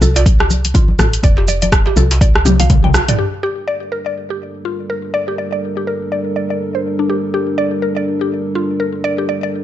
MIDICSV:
0, 0, Header, 1, 6, 480
1, 0, Start_track
1, 0, Key_signature, -2, "minor"
1, 0, Tempo, 487805
1, 1218, Time_signature, 4, 2, 24, 8
1, 9484, End_track
2, 0, Start_track
2, 0, Title_t, "Synth pluck"
2, 0, Program_c, 0, 84
2, 17, Note_on_c, 0, 69, 80
2, 144, Note_off_c, 0, 69, 0
2, 159, Note_on_c, 0, 74, 79
2, 249, Note_off_c, 0, 74, 0
2, 398, Note_on_c, 0, 67, 74
2, 489, Note_off_c, 0, 67, 0
2, 735, Note_on_c, 0, 65, 84
2, 870, Note_off_c, 0, 65, 0
2, 973, Note_on_c, 0, 69, 77
2, 1101, Note_off_c, 0, 69, 0
2, 1218, Note_on_c, 0, 74, 107
2, 1344, Note_off_c, 0, 74, 0
2, 1356, Note_on_c, 0, 67, 72
2, 1448, Note_off_c, 0, 67, 0
2, 1459, Note_on_c, 0, 74, 81
2, 1534, Note_off_c, 0, 74, 0
2, 1597, Note_on_c, 0, 74, 77
2, 1652, Note_off_c, 0, 74, 0
2, 1839, Note_on_c, 0, 67, 75
2, 1934, Note_off_c, 0, 67, 0
2, 1937, Note_on_c, 0, 69, 76
2, 2064, Note_off_c, 0, 69, 0
2, 2176, Note_on_c, 0, 74, 79
2, 2253, Note_off_c, 0, 74, 0
2, 2417, Note_on_c, 0, 67, 78
2, 2544, Note_off_c, 0, 67, 0
2, 2556, Note_on_c, 0, 77, 76
2, 2648, Note_off_c, 0, 77, 0
2, 2794, Note_on_c, 0, 79, 74
2, 2850, Note_off_c, 0, 79, 0
2, 3037, Note_on_c, 0, 74, 75
2, 3128, Note_off_c, 0, 74, 0
2, 3135, Note_on_c, 0, 67, 83
2, 3212, Note_off_c, 0, 67, 0
2, 3377, Note_on_c, 0, 67, 104
2, 3511, Note_off_c, 0, 67, 0
2, 3617, Note_on_c, 0, 74, 95
2, 3744, Note_off_c, 0, 74, 0
2, 3856, Note_on_c, 0, 70, 71
2, 3983, Note_off_c, 0, 70, 0
2, 3995, Note_on_c, 0, 74, 77
2, 4087, Note_off_c, 0, 74, 0
2, 4234, Note_on_c, 0, 67, 72
2, 4327, Note_off_c, 0, 67, 0
2, 4576, Note_on_c, 0, 65, 75
2, 4710, Note_off_c, 0, 65, 0
2, 4819, Note_on_c, 0, 70, 76
2, 4944, Note_off_c, 0, 70, 0
2, 5056, Note_on_c, 0, 74, 104
2, 5183, Note_off_c, 0, 74, 0
2, 5195, Note_on_c, 0, 67, 71
2, 5287, Note_off_c, 0, 67, 0
2, 5297, Note_on_c, 0, 74, 78
2, 5373, Note_off_c, 0, 74, 0
2, 5436, Note_on_c, 0, 74, 79
2, 5491, Note_off_c, 0, 74, 0
2, 5676, Note_on_c, 0, 67, 74
2, 5773, Note_off_c, 0, 67, 0
2, 5779, Note_on_c, 0, 70, 75
2, 5904, Note_off_c, 0, 70, 0
2, 6021, Note_on_c, 0, 74, 82
2, 6095, Note_off_c, 0, 74, 0
2, 6259, Note_on_c, 0, 74, 72
2, 6388, Note_off_c, 0, 74, 0
2, 6399, Note_on_c, 0, 74, 75
2, 6453, Note_off_c, 0, 74, 0
2, 6640, Note_on_c, 0, 72, 75
2, 6693, Note_off_c, 0, 72, 0
2, 6879, Note_on_c, 0, 62, 76
2, 6969, Note_off_c, 0, 62, 0
2, 6982, Note_on_c, 0, 67, 88
2, 7056, Note_off_c, 0, 67, 0
2, 7222, Note_on_c, 0, 67, 99
2, 7353, Note_off_c, 0, 67, 0
2, 7457, Note_on_c, 0, 74, 99
2, 7584, Note_off_c, 0, 74, 0
2, 7697, Note_on_c, 0, 70, 74
2, 7824, Note_off_c, 0, 70, 0
2, 7837, Note_on_c, 0, 74, 80
2, 7928, Note_off_c, 0, 74, 0
2, 8080, Note_on_c, 0, 67, 74
2, 8169, Note_off_c, 0, 67, 0
2, 8417, Note_on_c, 0, 65, 78
2, 8550, Note_off_c, 0, 65, 0
2, 8657, Note_on_c, 0, 70, 73
2, 8784, Note_off_c, 0, 70, 0
2, 8896, Note_on_c, 0, 74, 99
2, 9023, Note_off_c, 0, 74, 0
2, 9036, Note_on_c, 0, 67, 69
2, 9127, Note_off_c, 0, 67, 0
2, 9139, Note_on_c, 0, 74, 79
2, 9214, Note_off_c, 0, 74, 0
2, 9282, Note_on_c, 0, 74, 76
2, 9334, Note_off_c, 0, 74, 0
2, 9484, End_track
3, 0, Start_track
3, 0, Title_t, "Analog synth pad"
3, 0, Program_c, 1, 89
3, 3138, Note_on_c, 1, 70, 87
3, 3139, Note_on_c, 1, 55, 81
3, 3139, Note_on_c, 1, 62, 69
3, 3139, Note_on_c, 1, 69, 69
3, 9484, Note_off_c, 1, 55, 0
3, 9484, Note_off_c, 1, 62, 0
3, 9484, Note_off_c, 1, 69, 0
3, 9484, Note_off_c, 1, 70, 0
3, 9484, End_track
4, 0, Start_track
4, 0, Title_t, "FM bass"
4, 0, Program_c, 2, 39
4, 15, Note_on_c, 2, 36, 96
4, 928, Note_off_c, 2, 36, 0
4, 973, Note_on_c, 2, 33, 94
4, 1155, Note_off_c, 2, 33, 0
4, 1215, Note_on_c, 2, 29, 104
4, 1888, Note_off_c, 2, 29, 0
4, 1934, Note_on_c, 2, 36, 95
4, 2406, Note_off_c, 2, 36, 0
4, 2412, Note_on_c, 2, 36, 96
4, 2967, Note_off_c, 2, 36, 0
4, 9484, End_track
5, 0, Start_track
5, 0, Title_t, "Djembe"
5, 12, Note_on_c, 9, 64, 88
5, 111, Note_off_c, 9, 64, 0
5, 157, Note_on_c, 9, 62, 102
5, 159, Note_on_c, 9, 63, 88
5, 255, Note_off_c, 9, 62, 0
5, 258, Note_off_c, 9, 63, 0
5, 393, Note_on_c, 9, 63, 69
5, 491, Note_off_c, 9, 63, 0
5, 735, Note_on_c, 9, 63, 77
5, 833, Note_off_c, 9, 63, 0
5, 975, Note_on_c, 9, 63, 70
5, 978, Note_on_c, 9, 64, 102
5, 1074, Note_off_c, 9, 63, 0
5, 1076, Note_off_c, 9, 64, 0
5, 1347, Note_on_c, 9, 62, 83
5, 1358, Note_on_c, 9, 63, 80
5, 1445, Note_off_c, 9, 62, 0
5, 1457, Note_off_c, 9, 63, 0
5, 1595, Note_on_c, 9, 63, 65
5, 1693, Note_off_c, 9, 63, 0
5, 1828, Note_on_c, 9, 62, 87
5, 1926, Note_off_c, 9, 62, 0
5, 1931, Note_on_c, 9, 64, 93
5, 1935, Note_on_c, 9, 63, 88
5, 2029, Note_off_c, 9, 64, 0
5, 2034, Note_off_c, 9, 63, 0
5, 2077, Note_on_c, 9, 62, 100
5, 2174, Note_on_c, 9, 63, 62
5, 2176, Note_off_c, 9, 62, 0
5, 2273, Note_off_c, 9, 63, 0
5, 2558, Note_on_c, 9, 63, 76
5, 2656, Note_off_c, 9, 63, 0
5, 2795, Note_on_c, 9, 63, 67
5, 2894, Note_off_c, 9, 63, 0
5, 2895, Note_on_c, 9, 64, 109
5, 2993, Note_off_c, 9, 64, 0
5, 9484, End_track
6, 0, Start_track
6, 0, Title_t, "Drums"
6, 14, Note_on_c, 9, 63, 111
6, 20, Note_on_c, 9, 82, 88
6, 113, Note_off_c, 9, 63, 0
6, 119, Note_off_c, 9, 82, 0
6, 159, Note_on_c, 9, 42, 62
6, 160, Note_on_c, 9, 82, 51
6, 252, Note_on_c, 9, 62, 58
6, 255, Note_on_c, 9, 36, 111
6, 258, Note_off_c, 9, 42, 0
6, 258, Note_off_c, 9, 82, 0
6, 259, Note_on_c, 9, 42, 48
6, 259, Note_on_c, 9, 63, 62
6, 259, Note_on_c, 9, 82, 38
6, 351, Note_off_c, 9, 62, 0
6, 354, Note_off_c, 9, 36, 0
6, 357, Note_off_c, 9, 42, 0
6, 357, Note_off_c, 9, 63, 0
6, 358, Note_off_c, 9, 82, 0
6, 396, Note_on_c, 9, 37, 79
6, 495, Note_off_c, 9, 37, 0
6, 497, Note_on_c, 9, 63, 86
6, 497, Note_on_c, 9, 82, 87
6, 595, Note_off_c, 9, 82, 0
6, 596, Note_off_c, 9, 63, 0
6, 637, Note_on_c, 9, 42, 62
6, 638, Note_on_c, 9, 82, 50
6, 644, Note_on_c, 9, 62, 39
6, 730, Note_on_c, 9, 64, 103
6, 735, Note_on_c, 9, 36, 94
6, 736, Note_off_c, 9, 42, 0
6, 736, Note_off_c, 9, 82, 0
6, 736, Note_on_c, 9, 42, 50
6, 737, Note_on_c, 9, 82, 38
6, 742, Note_off_c, 9, 62, 0
6, 828, Note_off_c, 9, 64, 0
6, 834, Note_off_c, 9, 36, 0
6, 835, Note_off_c, 9, 42, 0
6, 835, Note_off_c, 9, 82, 0
6, 869, Note_on_c, 9, 63, 87
6, 968, Note_off_c, 9, 63, 0
6, 972, Note_on_c, 9, 64, 107
6, 977, Note_on_c, 9, 37, 92
6, 977, Note_on_c, 9, 82, 80
6, 978, Note_on_c, 9, 62, 56
6, 978, Note_on_c, 9, 63, 69
6, 1070, Note_off_c, 9, 64, 0
6, 1075, Note_off_c, 9, 37, 0
6, 1076, Note_off_c, 9, 82, 0
6, 1077, Note_off_c, 9, 62, 0
6, 1077, Note_off_c, 9, 63, 0
6, 1116, Note_on_c, 9, 42, 58
6, 1117, Note_on_c, 9, 82, 51
6, 1209, Note_on_c, 9, 64, 107
6, 1215, Note_off_c, 9, 42, 0
6, 1215, Note_off_c, 9, 82, 0
6, 1215, Note_on_c, 9, 36, 115
6, 1216, Note_on_c, 9, 42, 46
6, 1217, Note_on_c, 9, 82, 39
6, 1308, Note_off_c, 9, 64, 0
6, 1314, Note_off_c, 9, 36, 0
6, 1315, Note_off_c, 9, 42, 0
6, 1315, Note_off_c, 9, 82, 0
6, 1456, Note_on_c, 9, 82, 93
6, 1458, Note_on_c, 9, 62, 57
6, 1555, Note_off_c, 9, 82, 0
6, 1557, Note_off_c, 9, 62, 0
6, 1596, Note_on_c, 9, 42, 56
6, 1596, Note_on_c, 9, 82, 52
6, 1602, Note_on_c, 9, 63, 91
6, 1694, Note_off_c, 9, 42, 0
6, 1695, Note_off_c, 9, 82, 0
6, 1695, Note_on_c, 9, 36, 96
6, 1696, Note_on_c, 9, 37, 99
6, 1696, Note_on_c, 9, 42, 47
6, 1697, Note_on_c, 9, 82, 38
6, 1700, Note_off_c, 9, 63, 0
6, 1794, Note_off_c, 9, 36, 0
6, 1794, Note_off_c, 9, 37, 0
6, 1794, Note_off_c, 9, 42, 0
6, 1795, Note_off_c, 9, 82, 0
6, 1831, Note_on_c, 9, 62, 41
6, 1930, Note_off_c, 9, 62, 0
6, 1936, Note_on_c, 9, 82, 88
6, 1938, Note_on_c, 9, 63, 100
6, 2034, Note_off_c, 9, 82, 0
6, 2036, Note_off_c, 9, 63, 0
6, 2076, Note_on_c, 9, 42, 59
6, 2077, Note_on_c, 9, 82, 51
6, 2175, Note_off_c, 9, 42, 0
6, 2176, Note_off_c, 9, 82, 0
6, 2176, Note_on_c, 9, 36, 111
6, 2180, Note_on_c, 9, 42, 47
6, 2180, Note_on_c, 9, 62, 57
6, 2181, Note_on_c, 9, 82, 38
6, 2274, Note_off_c, 9, 36, 0
6, 2278, Note_off_c, 9, 42, 0
6, 2279, Note_off_c, 9, 62, 0
6, 2279, Note_off_c, 9, 82, 0
6, 2317, Note_on_c, 9, 37, 85
6, 2415, Note_off_c, 9, 37, 0
6, 2418, Note_on_c, 9, 48, 60
6, 2418, Note_on_c, 9, 63, 81
6, 2418, Note_on_c, 9, 82, 91
6, 2516, Note_off_c, 9, 48, 0
6, 2516, Note_off_c, 9, 63, 0
6, 2517, Note_off_c, 9, 82, 0
6, 2553, Note_on_c, 9, 64, 90
6, 2555, Note_on_c, 9, 42, 60
6, 2555, Note_on_c, 9, 82, 50
6, 2559, Note_on_c, 9, 63, 91
6, 2564, Note_on_c, 9, 62, 38
6, 2652, Note_off_c, 9, 64, 0
6, 2653, Note_off_c, 9, 42, 0
6, 2654, Note_off_c, 9, 82, 0
6, 2655, Note_on_c, 9, 42, 47
6, 2655, Note_on_c, 9, 47, 81
6, 2656, Note_on_c, 9, 36, 98
6, 2656, Note_on_c, 9, 82, 39
6, 2658, Note_off_c, 9, 63, 0
6, 2661, Note_on_c, 9, 63, 67
6, 2662, Note_off_c, 9, 62, 0
6, 2753, Note_off_c, 9, 42, 0
6, 2753, Note_off_c, 9, 47, 0
6, 2754, Note_off_c, 9, 36, 0
6, 2754, Note_off_c, 9, 82, 0
6, 2760, Note_off_c, 9, 63, 0
6, 2796, Note_on_c, 9, 47, 71
6, 2891, Note_on_c, 9, 62, 58
6, 2894, Note_off_c, 9, 47, 0
6, 2896, Note_on_c, 9, 37, 93
6, 2896, Note_on_c, 9, 82, 89
6, 2989, Note_off_c, 9, 62, 0
6, 2994, Note_off_c, 9, 37, 0
6, 2995, Note_off_c, 9, 82, 0
6, 3036, Note_on_c, 9, 42, 58
6, 3036, Note_on_c, 9, 45, 89
6, 3036, Note_on_c, 9, 82, 51
6, 3134, Note_off_c, 9, 42, 0
6, 3134, Note_off_c, 9, 45, 0
6, 3135, Note_off_c, 9, 82, 0
6, 9484, End_track
0, 0, End_of_file